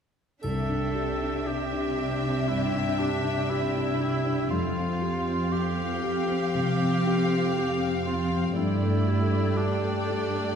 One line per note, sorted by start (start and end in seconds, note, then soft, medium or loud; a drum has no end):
0.43 2.44 C2 soft
0.43 4.48 C3 soft
0.43 4.47 D4 soft
0.43 1.48 A4 medium
0.43 4.48 E5 soft
0.43 4.48 G5 soft
0.43 triangle soft
0.69 1.10 D4 soft
0.95 1.36 G4 soft
1.21 1.62 D4 soft
1.46 2.50 G4 soft
1.46 1.87 G4 soft
1.73 2.13 D4 soft
1.98 2.38 G4 soft
2.23 2.64 D4 soft
2.48 2.89 G2 soft
2.48 3.00 E4 soft
2.73 3.14 D4 soft
2.99 3.52 D4 soft
2.99 3.40 G4 soft
3.25 3.65 D4 soft
3.50 4.50 E4 medium
3.50 3.91 G4 soft
3.76 4.16 D4 soft
4.00 4.41 G4 soft
4.26 4.52 D4 soft
4.51 8.52 F2 soft
4.51 6.50 F2 soft
4.51 8.52 C4 soft
4.51 5.54 F4 soft
4.51 8.52 F5 soft
4.51 8.52 G5 soft
4.77 5.17 C4 soft
5.02 5.42 G4 soft
5.28 5.68 C4 soft
5.53 7.89 G4 medium
5.53 5.93 G4 soft
5.78 6.18 C4 soft
6.03 6.43 G4 soft
6.29 6.69 C4 soft
6.55 6.95 C3 soft
6.81 7.20 C4 soft
7.07 7.46 G4 soft
7.32 7.71 C4 soft
7.57 7.96 G4 soft
7.82 8.21 C4 soft
8.06 8.38 F4 soft
8.06 8.47 G4 soft
8.32 8.57 C4 soft
8.56 10.55 G2 soft
8.56 10.55 A3 soft
8.56 9.59 E4 medium
8.56 10.55 D5 soft
8.56 10.55 G5 soft
8.83 9.22 A3 soft
9.07 9.48 G4 soft
9.33 9.74 A3 soft
9.57 10.55 D4 soft
9.57 9.99 G4 soft
9.85 10.26 A3 soft
10.10 10.52 G4 soft
10.36 10.55 A3 soft